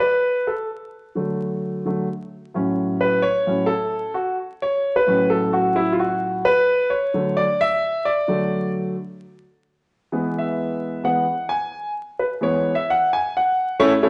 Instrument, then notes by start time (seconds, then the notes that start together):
grand piano
0.00 B4
0.47 A4
1.15 D3 F#3 A3
1.85 D3 F#3 A3
2.54 A2 F#3 C#4
3.01 B4
3.22 C#5
3.47 A2 F#3 C#4
3.66 A4
4.14 F#4
4.62 C#5
4.96 B4
5.07 A2 F#3 C#4
5.30 A4
5.53 F#4
5.76 E4
5.92 F4
5.99 F#4
6.45 B4
6.90 C#5
7.14 D3 F#3 A3
7.37 D5
7.61 E5
8.05 D5
8.28 D3 F#3 A3
10.12 E3 G#3 B3
10.38 E5
11.03 E3 G#3 B3 F#5
11.49 G#5
12.19 B4
12.41 E3 G#3 B3 C#5
12.75 E5
12.90 F#5
13.13 G#5
13.37 F#5
13.79 A3 C#4 E4 A4 C#5
14.03 A3 C#4 E4 A4 C#5